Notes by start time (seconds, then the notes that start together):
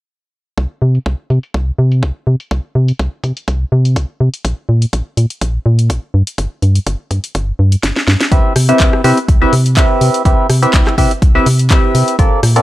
0.58 C2, kick, closed hi-hat
0.82 C3
0.95 closed hi-hat
1.06 C2, kick, closed hi-hat
1.30 C3, closed hi-hat
1.43 closed hi-hat
1.54 C2, kick, closed hi-hat
1.78 C3
1.92 closed hi-hat
2.03 C2, kick, closed hi-hat
2.27 C3
2.40 closed hi-hat
2.51 C2, kick, closed hi-hat
2.75 C3
2.88 closed hi-hat
2.99 C2, kick, closed hi-hat
3.24 C3, kick, closed hi-hat
3.37 closed hi-hat
3.48 C2, kick, closed hi-hat
3.72 C3
3.85 closed hi-hat
3.96 C2, kick, closed hi-hat
4.20 C3
4.34 closed hi-hat
4.45 A#1, kick, closed hi-hat
4.69 A#2
4.82 closed hi-hat
4.93 A#1, kick, closed hi-hat
5.17 A#2, closed hi-hat
5.30 closed hi-hat
5.41 A#1, kick, closed hi-hat
5.66 A#2
5.79 closed hi-hat
5.90 A#1, kick, closed hi-hat
6.14 G2
6.27 closed hi-hat
6.38 G1, kick, closed hi-hat
6.62 G2, closed hi-hat
6.75 closed hi-hat
6.87 G1, kick, closed hi-hat
7.11 G2, kick, closed hi-hat
7.24 closed hi-hat
7.35 G1, kick, closed hi-hat
7.59 G2
7.72 closed hi-hat
7.83 G1, kick, snare, closed hi-hat
7.96 snare
8.08 G2, snare
8.21 snare, closed hi-hat
8.32 C2 C4 E4 G4 B4 E5, kick, closed hi-hat
8.56 C3, cross-stick, open hi-hat
8.69 C4 E4 G4 B4 E5, closed hi-hat
8.80 C2, kick, clap, closed hi-hat
8.93 cross-stick
9.04 C3 C4 E4 G4 B4 E5, open hi-hat
9.17 closed hi-hat
9.28 C2, kick, closed hi-hat
9.42 C4 E4 G4 B4 E5
9.53 C3, open hi-hat
9.66 closed hi-hat
9.77 C2 C4 E4 G4 B4 E5, kick, clap, closed hi-hat
10.01 C3, open hi-hat
10.14 closed hi-hat
10.25 C2 C4 E4 G4 B4 E5, kick, closed hi-hat
10.50 C3, cross-stick, open hi-hat
10.63 C4 E4 G4 B4 E5, closed hi-hat
10.74 C2, kick, clap, closed hi-hat
10.87 cross-stick, clap
10.98 C3 C4 E4 G4 B4 E5, kick, open hi-hat
11.11 closed hi-hat
11.22 C2, kick, closed hi-hat
11.35 C4 E4 G4 B4 E5
11.46 C3, open hi-hat
11.59 closed hi-hat
11.70 C2 C4 E4 G4 B4 E5, kick, clap, closed hi-hat
11.95 C3, open hi-hat
12.08 closed hi-hat
12.19 A#1 C4 F4 A4 A#4 D5, kick, closed hi-hat
12.43 A#2, cross-stick, open hi-hat
12.56 C4 F4 A4 A#4 D5, closed hi-hat